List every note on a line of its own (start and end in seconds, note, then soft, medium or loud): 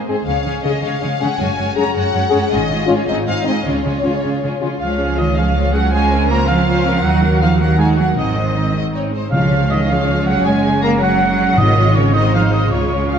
0.08 0.16 G#2 soft
0.08 0.15 C4 soft
0.08 0.26 G#4 soft
0.08 0.15 G#4 soft
0.08 0.27 C5 soft
0.26 0.44 C#2 soft
0.26 0.35 C#3 soft
0.26 0.44 G#3 soft
0.26 0.44 C#4 soft
0.26 0.44 G#4 soft
0.26 0.44 C#5 soft
0.26 0.61 F5 medium
0.45 0.54 C#3 soft
0.45 0.62 G#3 soft
0.45 0.62 C#4 soft
0.45 0.64 G#4 soft
0.45 0.64 C#5 soft
0.64 0.72 C#3 soft
0.64 0.82 G#3 soft
0.64 0.82 C#4 soft
0.64 0.71 C#4 soft
0.64 0.71 G#4 soft
0.64 0.82 G#4 soft
0.64 0.82 C#5 soft
0.64 0.83 D#5 soft
0.83 0.91 C#3 soft
0.83 0.99 G#3 soft
0.83 1.00 C#4 soft
0.83 1.00 G#4 soft
0.83 1.00 C#5 soft
0.83 1.21 F5 soft
1.01 1.10 C#3 soft
1.01 1.19 G#3 soft
1.01 1.19 C#4 soft
1.01 1.19 G#4 soft
1.01 1.19 C#5 soft
1.20 1.29 C#3 soft
1.20 1.37 G#3 soft
1.20 1.37 C#4 soft
1.20 1.27 C#4 soft
1.20 1.27 G#4 soft
1.20 1.39 G#4 soft
1.20 1.39 C#5 soft
1.20 1.40 F#5 medium
1.38 1.57 F#1 soft
1.38 1.48 F#2 soft
1.38 1.55 G#3 soft
1.38 1.55 C#4 soft
1.38 1.56 F#4 soft
1.38 1.57 C#5 soft
1.38 1.77 G#5 soft
1.56 1.66 F#2 soft
1.56 1.74 G#3 soft
1.56 1.75 C#4 soft
1.56 1.75 F#4 soft
1.56 1.75 C#5 soft
1.76 1.85 F#2 soft
1.76 1.93 G#3 soft
1.76 1.94 C#4 soft
1.76 1.84 C#4 soft
1.76 1.95 F#4 soft
1.76 1.83 G#4 soft
1.76 1.95 C#5 soft
1.76 1.95 A#5 medium
1.94 2.04 F#2 soft
1.94 2.12 G#3 soft
1.94 2.12 C#4 soft
1.94 2.13 F#4 soft
1.94 2.13 C#5 soft
1.94 2.50 F#5 medium
2.13 2.22 F#2 soft
2.13 2.30 G#3 soft
2.13 2.30 C#4 soft
2.13 2.31 F#4 soft
2.13 2.31 C#5 soft
2.30 2.41 F#2 medium
2.30 2.48 G#3 soft
2.30 2.38 C#4 medium
2.30 2.49 C#4 soft
2.30 2.51 F#4 soft
2.30 2.37 G#4 medium
2.30 2.51 C#5 soft
2.50 2.69 G#1 medium
2.50 2.59 G#2 medium
2.50 2.67 G#3 soft
2.50 2.67 C#4 soft
2.50 2.69 F4 soft
2.50 2.70 G#4 soft
2.50 2.88 D#5 medium
2.68 2.78 G#2 soft
2.68 2.87 G#3 soft
2.68 2.87 C#4 soft
2.68 2.88 F4 soft
2.68 2.89 G#4 soft
2.86 2.97 G#2 soft
2.86 3.05 G#3 soft
2.86 2.94 C#4 medium
2.86 3.07 C#4 soft
2.86 2.93 F4 soft
2.86 3.08 F4 soft
2.86 3.08 C#5 medium
2.90 3.08 G#4 soft
3.06 3.25 G#1 soft
3.06 3.16 G#2 soft
3.06 3.25 G#3 soft
3.06 3.25 C4 soft
3.06 3.26 D#4 soft
3.06 3.26 G#4 soft
3.06 3.15 D#5 medium
3.26 3.35 G#2 soft
3.26 3.44 G#3 soft
3.26 3.44 C4 soft
3.26 3.46 D#4 soft
3.26 3.45 G#4 soft
3.26 3.46 F5 medium
3.44 3.55 G#2 soft
3.44 3.63 G#3 soft
3.44 3.51 C4 soft
3.44 3.64 C4 soft
3.44 3.51 D#4 soft
3.44 3.65 D#4 soft
3.44 3.64 G#4 soft
3.44 3.65 D#5 medium
3.64 3.83 C#2 soft
3.64 3.74 C#3 soft
3.64 3.83 G#3 soft
3.64 3.83 C#4 soft
3.64 3.84 F4 soft
3.64 3.84 G#4 soft
3.64 4.62 C#5 medium
3.84 3.93 C#3 soft
3.84 4.01 G#3 soft
3.84 4.01 C#4 soft
3.84 4.04 F4 soft
3.84 4.04 G#4 soft
4.02 4.13 C#3 soft
4.02 4.21 G#3 soft
4.02 4.21 C#4 soft
4.02 4.10 C#4 soft
4.02 4.11 F4 soft
4.02 4.23 F4 soft
4.02 4.23 G#4 soft
4.22 4.32 C#3 soft
4.22 4.41 G#3 soft
4.22 4.40 C#4 soft
4.22 4.42 F4 soft
4.22 4.42 G#4 soft
4.41 4.51 C#3 soft
4.41 4.59 G#3 soft
4.41 4.59 C#4 soft
4.41 4.60 F4 soft
4.41 4.61 G#4 soft
4.60 4.70 C#3 soft
4.60 4.78 G#3 soft
4.60 4.80 C#4 soft
4.60 4.68 C#4 soft
4.60 4.80 F4 soft
4.60 4.68 F4 soft
4.60 4.80 G#4 soft
4.79 7.01 C#2 medium
4.79 5.17 F3 medium
4.79 4.97 G#3 soft
4.79 4.97 F4 soft
4.79 4.99 C#5 soft
4.79 5.15 F5 soft
4.79 5.16 F5 medium
4.98 5.17 C#4 soft
4.98 5.18 G#4 soft
5.17 5.37 D#3 soft
5.17 5.37 G#3 soft
5.17 5.37 F4 soft
5.17 5.37 C#5 soft
5.17 5.37 D#5 medium
5.36 5.75 F3 soft
5.36 5.56 C#4 soft
5.36 5.55 G#4 soft
5.36 5.56 G#4 soft
5.36 5.75 F5 medium
5.36 5.76 F5 medium
5.55 5.74 G#3 soft
5.55 5.74 F4 soft
5.55 5.73 C#5 soft
5.74 5.93 F#3 medium
5.74 5.91 C#4 soft
5.74 5.93 G#4 soft
5.74 5.94 G#4 soft
5.74 5.93 F#5 medium
5.92 6.30 G#3 medium
5.92 6.10 C#4 medium
5.92 6.10 F4 soft
5.92 6.11 C5 soft
5.92 6.30 G#5 medium
6.12 6.31 C4 soft
6.12 6.29 C#4 soft
6.12 6.32 A#4 soft
6.30 6.38 A#3 medium
6.30 6.47 C#4 soft
6.30 6.49 F4 soft
6.30 6.49 A#4 medium
6.30 6.51 C5 soft
6.30 6.49 A#5 medium
6.47 7.04 F3 medium
6.47 6.68 C4 medium
6.47 6.66 C#4 soft
6.47 6.69 A#4 soft
6.47 7.04 F5 medium
6.67 6.84 C#4 medium
6.67 6.85 F4 medium
6.67 6.86 C5 medium
6.85 7.05 C4 medium
6.85 7.05 C#4 medium
6.85 7.06 A#4 medium
7.02 8.16 D#2 medium
7.02 7.22 F#3 medium
7.02 7.43 F#3 medium
7.02 7.22 D#4 medium
7.02 7.23 F#4 soft
7.02 7.41 F#5 medium
7.02 7.42 F#5 medium
7.22 7.42 A#3 soft
7.22 7.42 F#4 soft
7.22 7.43 A#4 medium
7.41 7.61 F3 medium
7.41 7.61 F#3 soft
7.41 7.61 D#4 soft
7.41 7.62 F#4 soft
7.41 7.61 F5 medium
7.41 7.60 F5 medium
7.60 7.81 F#3 medium
7.60 7.80 A#3 soft
7.60 7.80 F#4 soft
7.60 7.81 A#4 soft
7.60 7.77 F#5 medium
7.60 7.80 F#5 medium
7.78 7.98 F#3 soft
7.78 7.99 G#3 medium
7.78 7.97 D#4 soft
7.78 7.98 F#4 medium
7.78 7.87 G#5 medium
7.78 7.88 G#5 medium
7.97 8.07 F#3 soft
7.97 8.18 A#3 soft
7.97 8.18 F#4 soft
7.97 8.19 A#4 soft
7.97 8.06 F#5 medium
7.97 8.18 F#5 medium
8.17 9.14 G#1 medium
8.17 8.75 D#3 soft
8.17 8.35 C4 soft
8.17 8.36 D#4 soft
8.17 8.74 D#5 medium
8.17 8.37 D#5 soft
8.17 8.75 D#5 soft
8.36 8.56 G#3 soft
8.36 8.54 C4 soft
8.36 8.57 C5 soft
8.55 8.72 C4 soft
8.55 8.75 D#4 soft
8.55 8.76 D#5 soft
8.73 8.94 G#3 soft
8.73 8.92 C4 soft
8.77 8.85 D#5 soft
8.93 9.12 C4 soft
8.93 9.12 D#4 soft
8.93 9.03 C#5 soft
9.12 9.31 G#3 soft
9.12 9.32 C4 soft
9.12 9.33 C5 soft
9.31 10.41 C#2 medium
9.31 9.85 C#3 medium
9.31 9.68 F3 medium
9.31 11.54 G#3 medium
9.31 11.54 C#4 soft
9.31 9.67 F5 medium
9.31 9.68 F5 medium
9.35 11.55 C#5 medium
9.70 9.89 D#3 medium
9.70 9.79 D#5 medium
9.70 9.90 D#5 medium
9.88 10.27 F3 medium
9.88 10.28 F5 medium
9.88 10.27 F5 medium
10.27 10.46 F#3 medium
10.27 10.45 F#5 medium
10.27 10.46 F#5 medium
10.45 11.58 F#1 medium
10.45 10.83 G#3 medium
10.45 10.82 G#5 medium
10.45 10.83 G#5 medium
10.82 11.01 A#3 medium
10.82 11.01 A#4 medium
10.82 10.89 A#5 medium
11.01 11.57 F#3 medium
11.01 11.57 F#5 medium
11.57 12.69 G#1 medium
11.57 12.11 G#2 medium
11.57 11.96 D#3 medium
11.57 13.19 G#3 medium
11.57 12.14 F4 medium
11.57 12.14 C#5 medium
11.57 11.97 D#5 loud
11.57 11.96 D#5 medium
11.95 12.15 C#3 medium
11.95 12.13 C#5 medium
11.95 12.15 C#5 medium
12.13 12.33 D#3 medium
12.13 12.72 D#4 medium
12.13 12.72 C5 medium
12.13 12.23 D#5 medium
12.13 12.34 D#5 medium
12.33 12.41 F3 medium
12.33 12.42 F5 medium
12.33 12.52 F5 medium
12.53 12.72 D#3 medium
12.53 12.73 D#5 medium
12.53 12.72 D#5 medium
12.71 13.19 C#2 medium
12.71 13.19 C#3 medium
12.71 13.19 F4 soft
12.71 13.10 C#5 soft
12.71 13.11 C#5 medium
12.71 13.19 C#5 soft
13.10 13.19 F5 soft
13.10 13.19 F5 medium